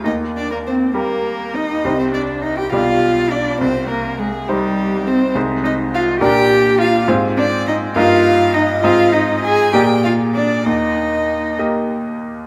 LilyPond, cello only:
\new Staff \with { instrumentName = "Cello" } { \time 6/8 \key ees \major \tempo 4. = 68 ees'8 d'16 bes16 c'8 bes4 ees'8~ | ees'16 c'16 d'8 ees'16 g'16 f'4 d'8 | c'8 bes8 aes8 g4 c'8 | r8 ees'8 f'8 g'4 f'8 |
r8 d'8 ees'8 f'4 ees'8 | f'8 ees'8 aes'8 g'8 f'8 d'8 | ees'4. r4. | }